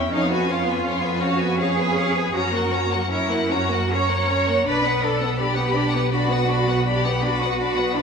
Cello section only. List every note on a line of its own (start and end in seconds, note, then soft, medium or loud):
0.00 0.11 C#4 medium
0.10 0.29 D#4 medium
0.30 0.48 F#4 medium
0.47 1.21 F4 medium
1.21 1.59 F#4 medium
1.59 2.34 G#4 medium
2.34 3.10 F#4 medium
3.10 3.50 E4 medium
3.52 3.91 F#4 medium
3.92 4.67 C#5 medium
4.67 5.02 B4 medium
5.04 5.40 A4 medium
5.39 6.12 G4 medium
6.13 6.87 F#4 medium
6.87 7.24 G4 medium
7.24 7.95 F#4 medium
7.96 8.02 D4 medium